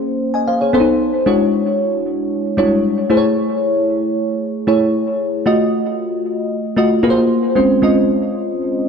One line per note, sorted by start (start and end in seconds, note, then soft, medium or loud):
0.00 0.76 A#3 medium
0.00 0.73 C#4 medium
0.00 0.62 G#4 medium
0.00 0.48 C5 medium
0.34 0.47 D#5 medium
0.34 0.46 G#5 medium
0.47 0.60 C5 medium
0.47 0.60 F5 medium
0.61 0.86 G#4 medium
0.61 0.86 C#5 medium
0.73 1.16 B3 medium
0.73 0.80 C#4 medium
0.73 1.16 A4 medium
0.73 1.17 C5 loud
0.80 1.19 D#4 medium
1.26 2.11 G#3 medium
1.26 2.11 D4 medium
1.26 2.12 E4 medium
1.26 2.12 F#4 medium
1.26 2.12 C#5 loud
2.57 2.64 G3 medium
2.57 3.10 D4 medium
2.57 3.09 E4 medium
2.57 3.10 F#4 medium
2.57 3.10 C#5 medium
2.63 3.13 G#3 medium
3.10 3.95 A3 medium
3.10 3.95 E4 medium
3.10 3.95 G#4 medium
3.10 3.17 C5 medium
3.17 3.99 C#5 loud
4.67 5.31 A3 medium
4.67 5.31 E4 medium
4.67 5.31 G#4 medium
4.67 5.32 C#5 medium
5.46 6.31 A3 medium
5.46 6.31 F4 medium
5.46 6.31 F#4 medium
5.46 6.32 D#5 loud
6.76 7.03 A3 medium
6.76 7.02 F4 medium
6.76 7.02 F#4 medium
6.76 7.04 D#5 medium
7.03 7.46 A#3 loud
7.03 7.46 F4 medium
7.03 7.46 F#4 medium
7.03 7.46 G#4 medium
7.03 7.10 B4 medium
7.10 7.49 C5 loud
7.55 7.77 G#3 medium
7.55 7.77 C4 medium
7.55 7.77 C#4 medium
7.55 7.77 F4 medium
7.55 7.77 C5 medium
7.82 8.67 G#3 medium
7.82 8.67 C4 medium
7.82 8.67 C#4 medium
7.82 8.68 F4 medium
7.82 8.68 D#5 medium